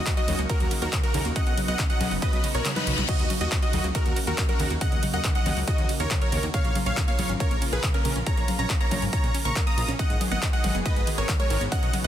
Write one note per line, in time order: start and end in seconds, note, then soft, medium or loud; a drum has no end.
0.00 9.95 C#3 medium
0.00 6.50 F#3 medium
0.00 1.34 A#3 medium
0.00 6.50 D#4 medium
0.00 0.11 F#4 medium
0.00 1.33 F#4 medium
0.00 0.11 D#5 loud
0.00 0.11 D#5 medium
0.06 0.09 C#3 loud
0.06 kick loud
0.06 clap loud
0.06 closed hi-hat medium
0.06 ride medium
0.17 0.21 F#3 medium
0.17 0.40 F#4 medium
0.17 0.40 D#5 medium
0.17 0.41 D#5 loud
0.17 closed hi-hat soft
0.28 0.35 D#2 medium
0.28 0.34 C#3 loud
0.28 open hi-hat loud
0.28 ride medium
0.28 high conga medium
0.39 0.46 C#2 medium
0.39 0.43 A#3 medium
0.39 closed hi-hat soft
0.49 0.56 C#3 loud
0.49 0.73 F#4 medium
0.49 0.73 A#4 medium
0.49 0.73 A#4 loud
0.49 kick loud
0.49 closed hi-hat medium
0.49 ride medium
0.60 0.67 D#2 medium
0.60 0.66 F#3 medium
0.60 closed hi-hat soft
0.71 0.74 C#3 medium
0.71 open hi-hat loud
0.71 ride medium
0.82 0.89 D#2 medium
0.82 0.84 A#3 medium
0.82 0.97 F#4 medium
0.82 0.97 A#4 medium
0.82 closed hi-hat soft
0.93 0.95 C#3 loud
0.93 kick loud
0.93 clap loud
0.93 closed hi-hat loud
0.93 ride medium
1.03 1.08 F#3 medium
1.03 1.27 F#4 medium
1.03 1.27 A#4 loud
1.03 closed hi-hat soft
1.14 1.21 D#2 loud
1.14 1.20 C#3 loud
1.14 open hi-hat loud
1.14 ride medium
1.25 1.32 D#2 medium
1.25 1.29 A#3 medium
1.25 closed hi-hat soft
1.36 1.42 C#3 loud
1.36 3.07 B3 medium
1.36 6.50 F#4 medium
1.36 1.59 D#5 medium
1.36 1.59 F#5 loud
1.36 kick loud
1.36 closed hi-hat medium
1.36 ride medium
1.47 1.54 B1 medium
1.47 1.53 F#3 medium
1.47 closed hi-hat soft
1.57 1.60 C#3 medium
1.57 open hi-hat loud
1.57 ride medium
1.57 high conga medium
1.68 1.75 B1 medium
1.68 1.71 B3 medium
1.68 1.84 D#5 medium
1.68 1.84 F#5 medium
1.68 closed hi-hat soft
1.79 1.81 C#3 loud
1.79 kick loud
1.79 clap loud
1.79 closed hi-hat medium
1.79 ride medium
1.90 1.94 F#3 medium
1.90 2.13 D#5 medium
1.90 2.13 F#5 medium
1.90 2.13 F#5 loud
1.90 closed hi-hat soft
2.01 2.08 B1 loud
2.01 2.07 C#3 loud
2.01 open hi-hat loud
2.01 ride medium
2.01 high conga medium
2.11 2.18 F#1 medium
2.11 2.15 B3 medium
2.11 open hi-hat medium
2.22 2.28 C#3 loud
2.22 2.46 B4 medium
2.22 2.46 D#5 loud
2.22 2.46 D#5 medium
2.22 kick loud
2.22 closed hi-hat loud
2.22 ride medium
2.22 reverse cymbal medium
2.33 2.40 B1 medium
2.33 2.39 F#3 medium
2.33 closed hi-hat soft
2.44 2.46 C#3 medium
2.44 open hi-hat loud
2.44 ride medium
2.55 2.62 B1 medium
2.55 2.57 B3 medium
2.55 2.70 A#4 medium
2.55 2.70 C#5 medium
2.55 closed hi-hat soft
2.65 2.68 C#3 loud
2.65 snare medium
2.65 clap loud
2.65 closed hi-hat loud
2.65 ride medium
2.76 2.80 F#3 medium
2.76 3.00 D#4 medium
2.76 3.00 B4 loud
2.76 snare medium
2.76 closed hi-hat soft
2.76 high conga medium
2.87 2.94 B1 medium
2.87 2.93 C#3 loud
2.87 open hi-hat loud
2.87 ride medium
2.98 3.05 B1 medium
2.98 3.02 B3 medium
2.98 snare medium
2.98 closed hi-hat soft
3.08 3.15 C#3 loud
3.08 9.95 A#3 medium
3.08 3.32 F#4 medium
3.08 3.32 D#5 loud
3.08 kick loud
3.08 closed hi-hat medium
3.08 ride medium
3.08 crash medium
3.19 3.26 D#2 medium
3.19 3.25 F#3 medium
3.19 closed hi-hat soft
3.30 3.33 C#3 medium
3.30 open hi-hat loud
3.30 ride medium
3.30 high conga medium
3.41 3.48 D#2 medium
3.41 3.43 A#3 medium
3.41 3.56 F#4 medium
3.41 3.56 D#5 loud
3.41 3.57 D#5 medium
3.41 closed hi-hat soft
3.52 3.54 C#3 loud
3.52 kick loud
3.52 clap loud
3.52 closed hi-hat loud
3.52 ride medium
3.62 3.67 F#3 medium
3.62 3.86 F#4 medium
3.62 3.86 D#5 medium
3.62 3.86 D#5 loud
3.62 closed hi-hat soft
3.73 3.80 D#2 loud
3.73 3.79 C#3 loud
3.73 open hi-hat loud
3.73 ride medium
3.73 high conga medium
3.84 3.91 C#2 medium
3.84 3.88 A#3 medium
3.84 closed hi-hat soft
3.95 4.01 C#3 loud
3.95 4.18 F#4 medium
3.95 4.18 A#4 medium
3.95 4.18 A#4 loud
3.95 kick loud
3.95 closed hi-hat loud
3.95 ride medium
4.06 4.13 D#2 medium
4.06 4.12 F#3 medium
4.06 closed hi-hat soft
4.16 4.19 C#3 medium
4.16 open hi-hat loud
4.16 ride medium
4.27 4.34 D#2 medium
4.27 4.30 A#3 medium
4.27 4.43 F#4 medium
4.27 4.43 A#4 medium
4.27 closed hi-hat soft
4.38 4.41 C#3 loud
4.38 kick loud
4.38 clap loud
4.38 closed hi-hat loud
4.38 ride medium
4.49 4.53 F#3 medium
4.49 4.72 F#4 medium
4.49 4.72 A#4 loud
4.49 closed hi-hat soft
4.60 4.67 D#2 loud
4.60 4.66 C#3 loud
4.60 open hi-hat loud
4.60 ride medium
4.70 4.77 D#2 medium
4.70 4.74 A#3 medium
4.70 closed hi-hat soft
4.81 4.87 C#3 loud
4.81 5.05 D#5 medium
4.81 5.05 F#5 loud
4.81 kick loud
4.81 closed hi-hat medium
4.81 ride medium
4.92 4.99 D#2 medium
4.92 4.98 F#3 medium
4.92 closed hi-hat soft
5.03 5.05 C#3 medium
5.03 open hi-hat loud
5.03 ride medium
5.03 high conga medium
5.14 5.21 D#2 medium
5.14 5.16 A#3 medium
5.14 5.29 D#5 medium
5.14 5.29 F#5 medium
5.14 closed hi-hat soft
5.24 5.27 C#3 loud
5.24 kick loud
5.24 clap loud
5.24 closed hi-hat medium
5.24 ride medium
5.35 5.39 F#3 medium
5.35 5.59 D#5 medium
5.35 5.59 F#5 medium
5.35 5.59 F#5 loud
5.35 closed hi-hat soft
5.46 5.53 D#2 loud
5.46 5.52 C#3 loud
5.46 open hi-hat loud
5.46 ride medium
5.46 high conga medium
5.57 5.64 C#2 medium
5.57 5.61 A#3 medium
5.57 open hi-hat medium
5.68 5.74 C#3 loud
5.68 5.91 F#4 medium
5.68 5.91 D#5 loud
5.68 5.91 D#5 medium
5.68 kick loud
5.68 closed hi-hat loud
5.68 ride medium
5.78 5.85 D#2 medium
5.78 5.84 F#3 medium
5.78 closed hi-hat soft
5.89 5.92 C#3 medium
5.89 open hi-hat loud
5.89 ride medium
6.00 6.07 D#2 medium
6.00 6.02 A#3 medium
6.00 6.16 A#4 medium
6.00 6.15 C#5 medium
6.00 6.16 C#5 medium
6.00 closed hi-hat soft
6.11 6.13 C#3 loud
6.11 kick loud
6.11 clap loud
6.11 closed hi-hat loud
6.11 ride medium
6.21 6.26 F#3 medium
6.21 6.45 A#4 medium
6.21 6.45 C#5 loud
6.21 closed hi-hat soft
6.32 6.39 D#2 medium
6.32 6.38 C#3 loud
6.32 open hi-hat loud
6.32 ride medium
6.43 6.50 D#2 medium
6.43 6.47 A#3 medium
6.43 closed hi-hat soft
6.54 6.60 C#3 loud
6.54 9.96 F3 medium
6.54 9.96 F4 medium
6.54 9.96 A#4 medium
6.54 6.77 C#5 medium
6.54 6.77 F5 loud
6.54 kick loud
6.54 closed hi-hat medium
6.54 ride medium
6.65 6.72 A#1 medium
6.65 6.71 A#3 medium
6.65 closed hi-hat soft
6.75 6.78 C#3 medium
6.75 open hi-hat loud
6.75 ride medium
6.75 high conga medium
6.86 6.93 A#1 medium
6.86 6.89 C#4 medium
6.86 7.02 C#5 medium
6.86 7.02 F5 loud
6.86 7.02 F5 medium
6.86 closed hi-hat soft
6.97 6.99 C#3 loud
6.97 kick loud
6.97 clap loud
6.97 closed hi-hat medium
6.97 ride medium
7.08 7.12 A#3 medium
7.08 7.31 C#5 medium
7.08 7.31 F5 medium
7.08 7.31 F5 loud
7.08 closed hi-hat soft
7.19 7.26 A#1 medium
7.19 7.25 C#3 loud
7.19 open hi-hat loud
7.19 ride medium
7.19 high conga medium
7.29 7.36 G#1 medium
7.29 7.33 C#4 medium
7.29 closed hi-hat soft
7.40 7.46 C#3 loud
7.40 7.64 A#4 medium
7.40 7.64 C#5 loud
7.40 7.64 C#5 medium
7.40 kick loud
7.40 closed hi-hat medium
7.40 ride medium
7.51 7.58 A#1 medium
7.51 7.57 A#3 medium
7.51 closed hi-hat soft
7.62 7.64 C#3 medium
7.62 open hi-hat loud
7.62 ride medium
7.73 7.80 A#1 medium
7.73 7.75 C#4 medium
7.73 7.88 G#4 medium
7.73 7.88 B4 medium
7.73 closed hi-hat soft
7.83 7.86 C#3 loud
7.83 kick loud
7.83 clap loud
7.83 closed hi-hat medium
7.83 ride medium
7.94 7.98 A#3 medium
7.94 8.17 C#4 medium
7.94 8.17 A#4 loud
7.94 8.18 A#4 loud
7.94 closed hi-hat soft
8.05 8.12 A#1 medium
8.05 8.11 C#3 loud
8.05 open hi-hat loud
8.05 ride medium
8.16 8.23 A#1 medium
8.16 8.20 C#4 medium
8.16 closed hi-hat soft
8.26 8.33 C#3 loud
8.26 8.50 C#5 medium
8.26 8.50 A#5 loud
8.26 kick loud
8.26 closed hi-hat medium
8.26 ride medium
8.37 8.44 A#1 medium
8.37 8.43 A#3 medium
8.37 closed hi-hat soft
8.48 8.51 C#3 medium
8.48 open hi-hat loud
8.48 ride medium
8.48 high conga medium
8.59 8.66 A#1 medium
8.59 8.61 C#4 medium
8.59 8.74 C#5 medium
8.59 8.74 A#5 medium
8.59 8.75 A#5 medium
8.59 closed hi-hat soft
8.70 8.72 C#3 loud
8.70 kick loud
8.70 clap loud
8.70 closed hi-hat medium
8.70 ride medium
8.80 8.85 A#3 medium
8.80 9.04 C#5 medium
8.80 9.04 A#5 loud
8.80 closed hi-hat soft
8.91 8.98 A#1 loud
8.91 8.97 C#3 loud
8.91 open hi-hat loud
8.91 ride medium
8.91 high conga medium
9.02 9.09 G#1 medium
9.02 9.06 C#4 medium
9.02 open hi-hat medium
9.13 9.19 C#3 loud
9.13 9.36 C#5 medium
9.13 9.36 A#5 loud
9.13 9.36 A#5 medium
9.13 kick loud
9.13 closed hi-hat medium
9.13 ride medium
9.24 9.31 A#2 medium
9.24 9.30 A#3 medium
9.24 closed hi-hat soft
9.34 9.37 C#4 medium
9.34 open hi-hat loud
9.34 ride medium
9.45 9.52 A#1 medium
9.45 9.49 C#3 medium
9.45 9.61 A#5 medium
9.45 9.61 C#6 medium
9.45 closed hi-hat soft
9.56 9.58 A#4 loud
9.56 kick loud
9.56 clap loud
9.56 closed hi-hat medium
9.56 ride medium
9.67 9.73 A#3 medium
9.67 9.90 A#5 medium
9.67 9.90 D#6 loud
9.67 closed hi-hat soft
9.78 9.85 A#1 medium
9.78 9.82 F4 medium
9.78 open hi-hat loud
9.78 ride medium
9.88 9.95 A#1 medium
9.88 9.92 C#4 loud
9.88 closed hi-hat soft
9.99 10.05 D#3 loud
9.99 12.07 D#3 medium
9.99 11.70 G#3 medium
9.99 12.07 B3 medium
9.99 12.07 F#4 medium
9.99 11.70 G#4 medium
9.99 10.22 D#5 medium
9.99 10.22 F#5 loud
9.99 10.23 F#5 loud
9.99 kick loud
9.99 closed hi-hat medium
9.99 ride medium
10.10 10.17 G#1 medium
10.10 10.16 G#3 medium
10.10 closed hi-hat soft
10.21 10.23 D#3 medium
10.21 open hi-hat loud
10.21 ride medium
10.21 high conga medium
10.31 10.39 G#1 medium
10.31 10.34 B3 medium
10.31 10.47 D#5 medium
10.31 10.47 F#5 medium
10.31 closed hi-hat soft
10.42 10.45 D#3 loud
10.42 kick loud
10.42 clap loud
10.42 closed hi-hat medium
10.42 ride medium
10.53 10.57 G#3 medium
10.53 10.76 D#5 medium
10.53 10.76 F#5 loud
10.53 closed hi-hat soft
10.64 10.71 G#1 loud
10.64 10.70 D#3 loud
10.64 open hi-hat loud
10.64 ride medium
10.64 high conga medium
10.75 10.82 F#1 medium
10.75 10.79 B3 medium
10.75 closed hi-hat soft
10.85 10.92 D#3 loud
10.85 11.09 B4 medium
10.85 11.09 D#5 loud
10.85 11.09 D#5 medium
10.85 kick loud
10.85 closed hi-hat medium
10.85 ride medium
10.96 11.03 G#1 medium
10.96 11.02 G#3 medium
10.96 closed hi-hat soft
11.07 11.10 D#3 medium
11.07 open hi-hat loud
11.07 ride medium
11.18 11.25 G#1 medium
11.18 11.20 B3 medium
11.18 11.33 A#4 medium
11.18 11.33 C#5 medium
11.18 11.34 C#5 medium
11.18 closed hi-hat soft
11.29 11.31 D#3 loud
11.29 kick loud
11.29 clap loud
11.29 closed hi-hat medium
11.29 ride medium
11.39 11.44 G#3 medium
11.39 11.63 A#4 medium
11.39 11.63 C#5 loud
11.39 closed hi-hat soft
11.50 11.57 G#1 medium
11.50 11.56 D#3 loud
11.50 open hi-hat loud
11.50 ride medium
11.61 11.68 G#1 medium
11.61 11.65 B3 medium
11.61 closed hi-hat soft
11.72 11.78 C#3 loud
11.72 12.07 F#3 medium
11.72 12.07 C#4 medium
11.72 11.95 D#5 medium
11.72 11.95 F#5 loud
11.72 kick loud
11.72 closed hi-hat medium
11.72 ride medium
11.83 11.90 B1 medium
11.83 11.89 F#3 medium
11.83 closed hi-hat soft
11.93 11.96 C#3 medium
11.93 open hi-hat loud
11.93 ride medium
11.93 high conga medium